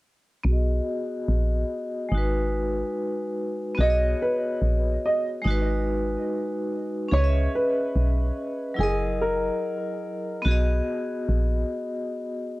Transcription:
0.43 fm bass B1, vibraphone B3 F#4
0.49 vibraphone G#4 D#5
1.28 fm bass A#1
2.09 fm bass G#1, vibraphone G#3 D#4
2.15 vibraphone F#4 B4
3.75 vibraphone B3 F#4
3.79 fm bass B1, vibraphone G#4, upright piano D#5
3.83 vibraphone C#5
3.90 vibraphone D#5
4.22 upright piano B4
4.62 fm bass A#1
5.06 upright piano D#5
5.42 fm bass G#1, vibraphone G#3 D#4
5.48 vibraphone F#4 B4
7.09 fm bass C#2, vibraphone C#4 G#4
7.13 vibraphone B4, upright piano C#5
7.17 vibraphone D#5
7.24 vibraphone E5
7.55 upright piano B4
7.96 fm bass B1
8.74 vibraphone F#3 E4
8.79 fm bass F#1, vibraphone G#4 A#4, upright piano G#4
8.83 vibraphone D#5
9.21 upright piano A#4
10.42 fm bass B1, vibraphone B3 F#4
10.48 vibraphone G#4 D#5
11.29 fm bass A#1

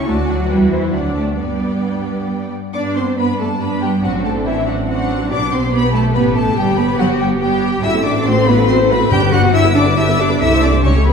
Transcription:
0.07 double bass section D2, cello section A3, viola section F#4, violin section F#4 D5 A5
0.28 cello section F#3, violin section F#5
0.50 double bass section E2, cello section G3, violin section E4 B4 G5
0.71 cello section E3, violin section C5 E5
0.93 double bass section D2, cello section F#3, violin section C4 D5 F#5, viola section D4
1.15 cello section A3, violin section A5
1.37 double bass section G2, cello section G3, viola section B3, violin section B3 D5 G5
2.74 double bass section G2, viola section B3 D4, cello section D4, violin section D5 D6
2.96 cello section C4, violin section C5 C6
3.18 viola section B3 D4, cello section B3, violin section B4 B5
3.39 cello section A3, violin section A4 A5
3.61 viola section B3 D4, cello section B3, violin section B4 B5
3.82 cello section G3, violin section G4 G5
4.02 double bass section A1, cello section F#3, viola section C4 D4, violin section F#4 F#5
4.24 cello section A3, violin section A4 A5
4.46 cello section E3, violin section E4 E5
4.67 cello section F#3, violin section F#4 F#5
4.88 cello section F#3, viola section C4 D4, violin section F#4 F#5
5.31 double bass section B1, viola section B3 G4, cello section D4, violin section D5 D6
5.53 cello section C4, violin section C5 C6
5.73 viola section B3 G4, cello section B3, violin section B4 B5
5.94 cello section A3, violin section A4 A5
6.15 double bass section A1, viola section B3 G4, cello section B3, violin section B4 B5
6.35 cello section A3, violin section A4 A5
6.57 double bass section G1, cello section G3, viola section B3 G4, violin section G4 G5
6.78 cello section B3, violin section B4 B5
6.99 cello section F#3, violin section F#4 F#5
7.20 cello section G3, violin section G4 G5
7.41 cello section G3, viola section B3 G4, violin section G4 G5
7.83 double bass section A1, viola section A3 F#4, cello section E4, violin section E5 E6
7.95 viola section C4 A4
8.05 viola section A3 F#4, cello section D4, violin section D5 D6
8.16 viola section C4 A4
8.26 viola section A3 F#4, cello section C4, violin section C5 C6
8.36 viola section C4 A4
8.46 viola section A3 F#4, cello section B3, violin section B4 B5
8.58 viola section C4 A4
8.67 viola section A3 F#4, cello section C4, violin section C5 C6
8.79 viola section C4 A4
8.89 viola section A3 F#4, cello section B3, violin section B4 B5
9.00 viola section C4 A4
9.11 double bass section G1, timpani G2, viola section D4 G4, cello section G4, violin section G5 G6
9.22 viola section B3 B4
9.33 viola section D4 G4, cello section F#4, violin section F#5 F#6
9.43 viola section B3 B4
9.54 viola section D4 G4, cello section E4, violin section E5 E6
9.65 viola section B3 B4
9.75 viola section D4 G4, cello section D4, violin section D5 D6
9.86 viola section B3 B4
9.97 viola section D4 G4, cello section E4, violin section E5 E6
10.07 viola section B3 B4
10.18 cello section D4, viola section D4 G4, violin section D5 D6
10.29 viola section B3 B4
10.40 double bass section C2, viola section C4 A4, cello section E4, violin section E5 E6
10.52 viola section A3 C5
10.62 viola section C4 A4, cello section D4, violin section D5 D6
10.74 viola section A3 C5
10.84 double bass section C#2, viola section G3 G4, cello section C#4, violin section C#5 C#6
10.96 viola section A3 A4
11.05 viola section G3 G4, cello section B3, violin section B4 B5

